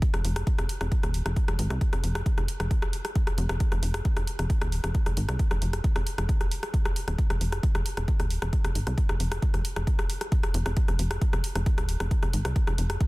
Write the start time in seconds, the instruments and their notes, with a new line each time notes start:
0.02 kick, closed hi-hat
0.14 analog synth bass F1, cross-stick, closed hi-hat
0.25 analog synth bass F1, open hi-hat
0.36 cross-stick, closed hi-hat
0.47 kick, closed hi-hat
0.58 analog synth bass F1, cross-stick, closed hi-hat
0.69 open hi-hat
0.81 analog synth bass F1, cross-stick, closed hi-hat
0.92 kick, closed hi-hat
1.03 analog synth bass D#1, cross-stick, closed hi-hat
1.14 open hi-hat
1.26 analog synth bass F1, cross-stick, closed hi-hat
1.36 kick, closed hi-hat
1.48 analog synth bass F1, cross-stick, closed hi-hat
1.59 analog synth bass G#1, open hi-hat
1.70 analog synth bass C2, cross-stick, closed hi-hat
1.81 kick, closed hi-hat
1.93 analog synth bass F1, cross-stick, closed hi-hat
2.03 analog synth bass F1, open hi-hat
2.15 cross-stick, closed hi-hat
2.26 kick, closed hi-hat
2.37 analog synth bass F1, cross-stick, closed hi-hat
2.48 open hi-hat
2.60 analog synth bass F1, cross-stick, closed hi-hat
2.71 kick, closed hi-hat
2.82 cross-stick, closed hi-hat
2.93 open hi-hat
3.05 cross-stick, closed hi-hat
3.15 kick, closed hi-hat
3.27 cross-stick, closed hi-hat
3.38 analog synth bass F1, open hi-hat
3.49 analog synth bass F1, cross-stick, closed hi-hat
3.60 kick, closed hi-hat
3.72 analog synth bass F1, cross-stick, closed hi-hat
3.83 analog synth bass F1, open hi-hat
3.94 cross-stick, closed hi-hat
4.05 kick, closed hi-hat
4.17 analog synth bass F1, cross-stick, closed hi-hat
4.27 open hi-hat
4.39 analog synth bass F1, cross-stick, closed hi-hat
4.50 kick, closed hi-hat
4.61 analog synth bass D#1, cross-stick, closed hi-hat
4.72 open hi-hat
4.84 analog synth bass F1, cross-stick, closed hi-hat
4.95 kick, closed hi-hat
5.06 analog synth bass F1, cross-stick, closed hi-hat
5.17 analog synth bass G#1, open hi-hat
5.29 analog synth bass C2, cross-stick, closed hi-hat
5.39 kick, closed hi-hat
5.51 analog synth bass F1, cross-stick, closed hi-hat
5.62 analog synth bass F1, open hi-hat
5.73 cross-stick, closed hi-hat
5.84 kick, closed hi-hat
5.96 analog synth bass F1, cross-stick, open hi-hat
6.07 open hi-hat
6.18 analog synth bass F1, cross-stick, closed hi-hat
6.29 kick, closed hi-hat
6.41 cross-stick, closed hi-hat
6.51 open hi-hat
6.63 cross-stick, closed hi-hat
6.74 kick, closed hi-hat
6.85 cross-stick, closed hi-hat
6.96 open hi-hat
7.08 analog synth bass D#1, cross-stick, closed hi-hat
7.18 kick, closed hi-hat
7.30 analog synth bass F1, cross-stick, closed hi-hat
7.41 analog synth bass F1, open hi-hat
7.52 cross-stick, closed hi-hat
7.63 kick, closed hi-hat
7.75 analog synth bass F1, cross-stick, closed hi-hat
7.86 open hi-hat
7.97 analog synth bass F1, cross-stick, closed hi-hat
8.08 kick, closed hi-hat
8.20 analog synth bass D#1, cross-stick, closed hi-hat
8.30 open hi-hat
8.42 analog synth bass F1, cross-stick, closed hi-hat
8.53 kick, closed hi-hat
8.64 analog synth bass F1, cross-stick, closed hi-hat
8.75 analog synth bass G#1, open hi-hat
8.87 analog synth bass C2, cross-stick, closed hi-hat
8.98 kick, closed hi-hat
9.09 analog synth bass F1, cross-stick, closed hi-hat
9.20 analog synth bass F1, open hi-hat
9.32 cross-stick, closed hi-hat
9.42 kick, closed hi-hat
9.54 analog synth bass F1, cross-stick, closed hi-hat
9.65 open hi-hat
9.76 analog synth bass F1, cross-stick, closed hi-hat
9.87 kick, closed hi-hat
9.99 cross-stick, closed hi-hat
10.10 open hi-hat
10.21 cross-stick, closed hi-hat
10.32 kick, closed hi-hat
10.43 cross-stick, closed hi-hat
10.54 analog synth bass F1, open hi-hat
10.66 analog synth bass F1, cross-stick, closed hi-hat
10.77 kick, closed hi-hat
10.88 analog synth bass F1, cross-stick, closed hi-hat
10.99 analog synth bass F1, open hi-hat
11.11 cross-stick, closed hi-hat
11.22 kick, closed hi-hat
11.33 analog synth bass F1, cross-stick, closed hi-hat
11.44 open hi-hat
11.55 analog synth bass F1, cross-stick, closed hi-hat
11.66 kick, closed hi-hat
11.78 analog synth bass D#1, cross-stick, closed hi-hat
11.89 open hi-hat
12.00 analog synth bass F1, cross-stick, closed hi-hat
12.11 kick, closed hi-hat
12.23 analog synth bass F1, cross-stick, closed hi-hat
12.33 analog synth bass G#1, open hi-hat
12.45 analog synth bass C2, cross-stick, closed hi-hat
12.56 kick, closed hi-hat
12.67 analog synth bass F1, cross-stick, closed hi-hat
12.78 analog synth bass F1, open hi-hat
12.90 cross-stick, closed hi-hat
13.01 kick, closed hi-hat